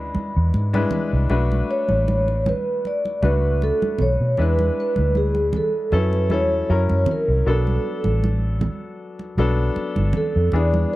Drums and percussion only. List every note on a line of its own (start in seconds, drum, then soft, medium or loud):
0.15 high conga medium
0.54 muted conga soft
0.74 muted conga soft
0.74 high conga medium
0.91 low conga medium
1.30 muted conga soft
1.52 muted conga soft
1.52 high conga soft
1.88 high conga medium
2.08 muted conga soft
2.08 high conga medium
2.28 muted conga soft
2.46 high conga medium
2.46 low conga medium
2.85 muted conga soft
3.05 muted conga soft
3.23 high conga medium
3.62 muted conga soft
3.82 muted conga soft
3.82 high conga medium
3.98 low conga medium
4.37 muted conga soft
4.59 muted conga soft
4.59 high conga medium
4.96 high conga medium
5.15 high conga medium
5.35 muted conga soft
5.53 high conga medium
5.53 low conga medium
5.92 muted conga soft
6.13 muted conga soft
6.30 high conga medium
6.89 muted conga soft
6.89 high conga medium
7.06 low conga medium
7.67 high conga soft
8.04 high conga medium
8.24 muted conga soft
8.24 high conga medium
8.61 high conga medium
8.61 low conga medium
9.19 muted conga soft
9.38 high conga medium
9.76 muted conga soft
9.96 muted conga soft
9.96 high conga medium
10.13 low conga medium
10.52 muted conga soft
10.74 high conga medium